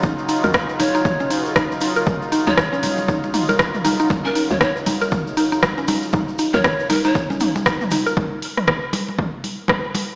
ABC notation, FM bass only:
X:1
M:4/4
L:1/16
Q:"Swing 16ths" 1/4=118
K:Ebm
V:1 name="FM bass" clef=bass
E,,, z2 E,, z2 E,,,3 B,,,3 E,,,3 z | E,,, z2 E,, z2 E,,,3 B,,,3 E,,, z3 | E,,, z2 E,, z2 E,,,3 B,,,3 E,,, z3 | E,,, z2 E,, z2 E,,,3 B,,,3 E,,, z3 |
z16 |]